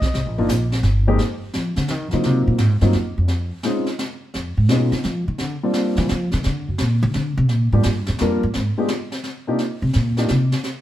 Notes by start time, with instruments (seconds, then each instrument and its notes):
Already playing: grand piano D#5
0.02 kick, snare
0.14 upright bass C2, brush sweep, kick, snare
0.26 upright bass A#1
0.38 upright bass G1, grand piano A#3 D4 D#4 F4
0.49 upright bass A#1, kick, snare, hi-hat pedal
0.72 snare
0.83 upright bass G1, kick, snare
1.07 grand piano F2 G#3 A#3 D#4 G4
1.19 brush sweep, snare
1.54 upright bass F3, snare
1.76 upright bass D3, snare
1.88 upright bass D#3, snare
2.11 upright bass D3, grand piano F#3 A#3 C4 D#4 F4, snare
2.23 upright bass C3, brush sweep, snare
2.47 upright bass A#2
2.58 upright bass G#2, snare
2.81 upright bass G2, grand piano F#3 A#3 C4 D#4 F4, snare
2.93 upright bass F#2, snare
3.18 upright bass F2
3.28 brush sweep, snare
3.63 grand piano G#3 C4 C#4 D#4 F4, snare
3.86 snare
3.99 snare
4.34 upright bass F2, brush sweep, snare
4.57 upright bass G#2
4.69 upright bass B2, grand piano G#3 B3 C#4 D#4 F4, snare
4.92 upright bass D#3, snare
5.03 upright bass F3, snare
5.28 upright bass D#3
5.38 upright bass D3, brush sweep, snare
5.63 grand piano G3 A#3 C4 D4 F4
5.74 snare
5.96 upright bass E3, snare
6.09 upright bass F3, snare
6.31 upright bass D#3, snare
6.44 upright bass D3, brush sweep, snare
6.68 upright bass F#2
6.78 upright bass A#2, snare
7.03 upright bass D#3
7.14 upright bass D3, snare
7.37 upright bass C3
7.49 upright bass A#2, brush sweep, snare
7.72 upright bass G#2, grand piano G3 A#3 D4 F4 G4
7.83 upright bass G2, snare
8.06 upright bass F#2, snare
8.19 upright bass F2, grand piano G3 A#3 D4 F4 A#4, snare
8.43 upright bass G2
8.54 upright bass G#2, brush sweep, snare
8.78 grand piano G#3 B3 D4 F4 G4
8.88 snare
9.12 snare
9.24 snare
9.47 grand piano C3 A#3 D4 D#4 F4 G4
9.59 brush sweep, snare
9.82 upright bass C3
9.93 upright bass A#2, snare
10.17 grand piano A#3 D4 D#4 F4 G4, snare
10.28 upright bass C3, snare
10.52 snare
10.64 brush sweep, snare